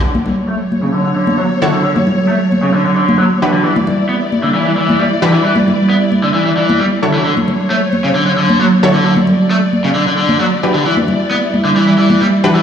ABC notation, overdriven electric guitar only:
X:1
M:4/4
L:1/16
Q:1/4=133
K:D
V:1 name="Overdriven electric guitar" clef=bass
D, z3 A, z2 C, D, D, D,2 F, z2 D, | D, z3 A, z2 C, D, D, D,2 F, z2 D, | E, z3 B, z2 D, E, E, E,2 G, z2 E, | E, z3 B, z2 D, E, E, E,2 G, z2 E, |
D, z3 A, z2 C, D, D, D,2 F, z2 D, | D, z3 A, z2 C, D, D, D,2 F, z2 D, | E, z3 B, z2 D, E, E, E,2 G, z2 E, |]